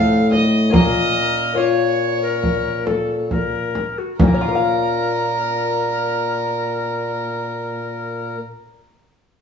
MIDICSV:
0, 0, Header, 1, 6, 480
1, 0, Start_track
1, 0, Key_signature, -5, "minor"
1, 0, Tempo, 835655
1, 424, Time_signature, 4, 2, 24, 8
1, 909, Tempo, 865801
1, 1869, Tempo, 894188
1, 5144, End_track
2, 0, Start_track
2, 0, Title_t, "Violin"
2, 0, Program_c, 0, 40
2, 0, Note_on_c, 0, 77, 85
2, 171, Note_off_c, 0, 77, 0
2, 187, Note_on_c, 0, 75, 72
2, 416, Note_off_c, 0, 75, 0
2, 420, Note_on_c, 0, 75, 84
2, 904, Note_on_c, 0, 73, 73
2, 913, Note_off_c, 0, 75, 0
2, 1866, Note_off_c, 0, 73, 0
2, 2348, Note_on_c, 0, 70, 72
2, 4584, Note_off_c, 0, 70, 0
2, 5144, End_track
3, 0, Start_track
3, 0, Title_t, "Recorder"
3, 0, Program_c, 1, 74
3, 0, Note_on_c, 1, 69, 62
3, 250, Note_off_c, 1, 69, 0
3, 416, Note_on_c, 1, 70, 55
3, 881, Note_off_c, 1, 70, 0
3, 896, Note_on_c, 1, 73, 74
3, 1236, Note_off_c, 1, 73, 0
3, 1261, Note_on_c, 1, 70, 68
3, 1615, Note_on_c, 1, 69, 61
3, 1623, Note_off_c, 1, 70, 0
3, 1858, Note_off_c, 1, 69, 0
3, 1861, Note_on_c, 1, 70, 61
3, 2227, Note_on_c, 1, 66, 50
3, 2236, Note_off_c, 1, 70, 0
3, 2343, Note_off_c, 1, 66, 0
3, 2346, Note_on_c, 1, 70, 65
3, 4582, Note_off_c, 1, 70, 0
3, 5144, End_track
4, 0, Start_track
4, 0, Title_t, "Lute"
4, 0, Program_c, 2, 24
4, 0, Note_on_c, 2, 45, 50
4, 0, Note_on_c, 2, 60, 45
4, 0, Note_on_c, 2, 65, 50
4, 0, Note_on_c, 2, 69, 45
4, 391, Note_off_c, 2, 60, 0
4, 395, Note_off_c, 2, 65, 0
4, 399, Note_off_c, 2, 69, 0
4, 402, Note_off_c, 2, 45, 0
4, 402, Note_on_c, 2, 61, 44
4, 410, Note_on_c, 2, 65, 45
4, 418, Note_on_c, 2, 70, 45
4, 423, Note_on_c, 2, 46, 50
4, 883, Note_off_c, 2, 61, 0
4, 886, Note_off_c, 2, 65, 0
4, 888, Note_on_c, 2, 61, 43
4, 891, Note_off_c, 2, 70, 0
4, 895, Note_on_c, 2, 65, 46
4, 902, Note_on_c, 2, 58, 44
4, 2127, Note_off_c, 2, 46, 0
4, 2316, Note_off_c, 2, 61, 0
4, 2319, Note_off_c, 2, 65, 0
4, 2322, Note_off_c, 2, 58, 0
4, 2346, Note_on_c, 2, 46, 48
4, 2384, Note_on_c, 2, 58, 52
4, 2421, Note_on_c, 2, 61, 52
4, 2458, Note_on_c, 2, 65, 53
4, 2496, Note_on_c, 2, 70, 53
4, 2532, Note_off_c, 2, 70, 0
4, 2534, Note_on_c, 2, 77, 53
4, 4582, Note_off_c, 2, 46, 0
4, 4620, Note_off_c, 2, 58, 0
4, 4657, Note_off_c, 2, 61, 0
4, 4694, Note_off_c, 2, 65, 0
4, 4770, Note_off_c, 2, 77, 0
4, 5144, End_track
5, 0, Start_track
5, 0, Title_t, "Trombone"
5, 0, Program_c, 3, 57
5, 0, Note_on_c, 3, 45, 62
5, 421, Note_off_c, 3, 45, 0
5, 424, Note_on_c, 3, 46, 57
5, 2128, Note_off_c, 3, 46, 0
5, 2346, Note_on_c, 3, 46, 64
5, 4582, Note_off_c, 3, 46, 0
5, 5144, End_track
6, 0, Start_track
6, 0, Title_t, "Frame drum"
6, 184, Note_on_c, 9, 64, 48
6, 241, Note_off_c, 9, 64, 0
6, 423, Note_on_c, 9, 64, 71
6, 480, Note_off_c, 9, 64, 0
6, 1381, Note_on_c, 9, 64, 43
6, 1437, Note_off_c, 9, 64, 0
6, 1622, Note_on_c, 9, 64, 51
6, 1677, Note_off_c, 9, 64, 0
6, 1866, Note_on_c, 9, 64, 45
6, 1920, Note_off_c, 9, 64, 0
6, 2105, Note_on_c, 9, 64, 48
6, 2158, Note_off_c, 9, 64, 0
6, 2342, Note_on_c, 9, 64, 74
6, 2395, Note_off_c, 9, 64, 0
6, 5144, End_track
0, 0, End_of_file